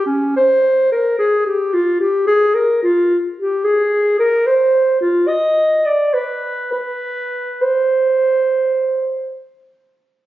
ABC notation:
X:1
M:12/8
L:1/8
Q:3/8=71
K:Fm
V:1 name="Clarinet"
D c2 B A G F G A B F z | [K:Cm] G A2 B c2 F e2 d =B2 | =B3 c6 z3 |]